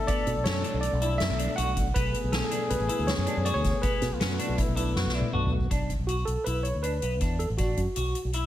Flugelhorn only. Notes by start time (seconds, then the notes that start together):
Already playing: A4
1.94 G#4
4.14 F4
4.21 F#4
4.57 E4
4.76 D4
4.95 F#4
5.15 E4
5.34 D4
5.54 F#4